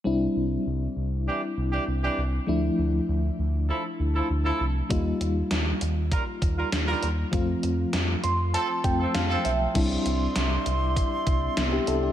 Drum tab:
CC |--------|--------|--------|--------|
HH |--------|--------|xxxxxxxx|xxxxxxxx|
SD |--------|--------|--o---o-|--o---o-|
BD |--------|--------|o---oo--|o----o--|

CC |x-------|
HH |xxxxxxxx|
SD |--o---o-|
BD |o---oo--|